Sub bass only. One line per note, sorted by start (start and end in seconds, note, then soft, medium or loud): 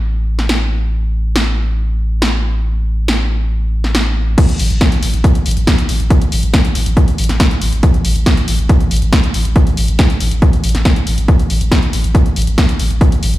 0.00 4.36 A1 medium
4.49 4.59 A1 medium
4.59 4.70 A1 loud
4.71 4.81 A1 medium
4.92 5.02 A1 medium
5.03 5.13 A1 loud
5.14 5.24 A1 medium
5.35 5.45 A1 medium
5.46 5.56 A1 loud
5.57 5.67 A1 medium
5.78 5.88 A1 medium
5.89 5.99 A1 loud
6.00 6.10 A1 medium
6.21 6.32 A1 medium
6.32 6.43 A1 medium
6.43 6.53 A1 medium
6.65 6.75 A1 medium
6.75 6.86 A1 loud
6.86 6.97 A1 medium
7.08 7.18 A1 medium
7.18 7.29 A1 medium
7.29 7.40 A1 medium
7.51 7.61 A1 medium
7.61 7.72 A1 loud
7.72 7.83 A1 medium
7.94 8.04 A1 medium
8.05 8.15 A1 loud
8.16 8.26 A1 medium
8.37 8.47 A1 medium
8.48 8.58 A1 loud
8.59 8.69 A1 medium
8.80 8.90 A1 medium
8.91 9.01 A1 loud
9.02 9.12 A1 medium
9.24 9.34 A1 medium
9.34 9.45 A1 medium
9.45 9.56 A1 medium
9.67 9.77 A1 medium
9.77 9.88 A1 medium
9.88 9.99 A1 medium
10.10 10.20 A1 medium
10.20 10.31 A1 loud
10.31 10.42 A1 medium
10.53 10.63 A1 medium
10.64 10.74 A1 medium
10.75 10.85 A1 medium
10.96 11.06 A1 medium
11.07 11.17 A1 loud
11.18 11.28 A1 medium
11.39 11.49 A1 medium
11.50 11.60 A1 loud
11.61 11.71 A1 medium
11.83 11.93 A1 medium
11.93 12.04 A1 loud
12.04 12.15 A1 medium
12.26 12.36 A1 medium
12.36 12.47 A1 loud
12.47 12.58 A1 medium
12.69 12.79 A1 medium
12.80 12.90 A1 loud
12.90 13.01 A1 medium
13.12 13.22 A1 medium
13.23 13.33 A1 loud
13.34 13.38 A1 medium